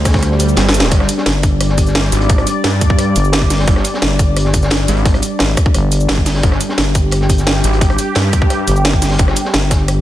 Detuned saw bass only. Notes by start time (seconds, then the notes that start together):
0.57 G1
0.92 G1
2.12 G#1
2.64 G2
3.68 G1
4.88 G#1
6.43 G1
7.64 G#1
8.16 G2
9.19 G1